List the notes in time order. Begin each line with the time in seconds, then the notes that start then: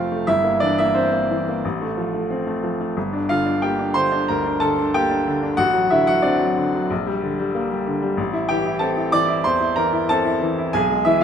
Already playing: C3 F3 A3 C4 F4 G4 A4 A#4 F5 G5 A5 A#5
0.12 A3
0.27 G1 E4 E5
0.44 A#3
0.60 E3 D4 D5
0.78 A#3 E4 E5
0.95 C4 C5
1.13 A#3
1.30 E3
1.49 A#3
1.65 A1
1.81 A3
1.97 F3
2.14 A3
2.30 C4
2.47 A3
2.64 F3
2.80 A3
2.97 G1
3.13 D4
3.29 D3 F4 F5
3.46 D4
3.62 A#3 G4 G5
3.78 D4
3.94 D3 C5 C6
4.12 D4
4.28 D2 A#4 A#5
4.46 D4
4.60 D3 A4 A5
4.79 D4
4.94 A#3 G4 G5
5.11 D4
5.27 D3
5.43 D4
5.57 A1 F#4 F#5
5.74 F#3
5.90 D3 E4 E5
6.07 F#3 F#4 F#5
6.22 C4 D4 D5
6.39 F#3
6.56 D3
6.75 F#3
6.90 A#1
7.07 G3
7.23 D3
7.39 G3
7.55 A#3
7.71 G3
7.87 D3
8.02 G3
8.17 A1
8.33 E4
8.49 E3 G4 G5
8.66 E4
8.79 C4 A4 A5
8.97 E4
9.12 E3 D5 D6
9.28 E4
9.44 E2 C5 C6
9.60 E4
9.76 E3 A#4 A#5
9.93 E4
10.09 C4 A4 A5
10.25 E4
10.42 E3
10.58 E4
10.73 B1 G#4 G#5
10.90 G#3
11.05 E3 E4 E5